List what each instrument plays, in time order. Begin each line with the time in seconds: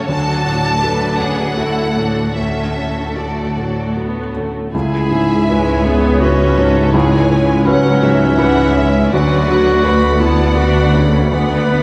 Already playing: felt piano C#3 C#4 F#4 A4
0.09 felt piano D2, cello section D2, viola section F#3 D4, violin section F#4 A4 A5
0.45 felt piano A2
0.83 viola section F#3, felt piano F#4 A4, violin section A4 B4
1.18 felt piano C#4, violin section G#4 F#5
1.57 viola section A3 E4, felt piano F#4 A4, violin section F#4 A4
1.96 felt piano A2, viola section D4
2.36 felt piano D2, viola section A3 C#4, violin section F#4 A4 E5
2.78 felt piano C#4
3.16 viola section A3, felt piano F#4 A4, violin section D5
3.57 felt piano A2, viola section F#3
3.96 viola section B3, felt piano F#4 A4
4.36 viola section A3, felt piano C#4
4.72 cello section C#2, double bass section C#2, felt piano C#2, clarinet E4, violin section G#4 E5 G#5
5.11 felt piano G#2
5.49 viola section G#3, felt piano E4 B4, violin section C#5
5.85 viola section B3, felt piano C#4, clarinet G#4
6.21 viola section C#4, felt piano E4 B4, clarinet F#4, violin section B4 C#5 E5
6.57 felt piano G#2, violin section A4
6.93 felt piano C#2, viola section G#3, clarinet E4, violin section G#4 C#5 G#5
7.30 viola section G#3, felt piano C#4, violin section B4
7.65 viola section F#3, clarinet C#4, felt piano E4 B4, violin section C#5 F#5
8.02 felt piano G#2, violin section E5
8.38 viola section E3, felt piano E4 B4, violin section C#5 F#5
8.75 viola section G#3, felt piano C#4, violin section E5
9.11 cello section D2, double bass section D2, felt piano D2, viola section F#3, clarinet F#4, violin section B4 D5 F#5
9.48 felt piano D3
9.84 viola section A3, felt piano F#4 B4, violin section D5 F#5 B5
10.19 felt piano B3, viola section B3, clarinet E4, violin section A5
10.55 viola section D4, felt piano F#4 B4, clarinet F#4, violin section B5
10.94 viola section C#3, felt piano D3
11.32 felt piano D2, viola section B3, clarinet B4, violin section D5 F#5 B5
11.72 felt piano B3